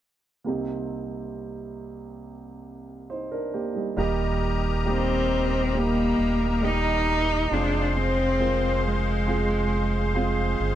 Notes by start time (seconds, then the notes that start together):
0.44 C2 C3 A#3 C4 D#4
0.48 G4
3.10 D#4 C5
3.32 D4 A#4
3.54 A#3 G4
3.74 G3 D#4
3.97 D#1 D#3 G3 A#3 D#4 G4 A#4 D#5 A#5
4.85 G3 A#3 C4 D#4 G4
5.73 G3 A#3 D#4 G4
5.78 A#3
6.19 D#1
6.62 G3 A#3 D#4 G4
7.51 F1 G#3 C4 D4 F4 G#4 C5 F5 C6
7.97 C4
8.39 G#3 C4 F4 A#4
8.86 G#3
9.26 G#3 C4 F4 G#4
10.14 G#3 C4 F4 G#4
10.60 G1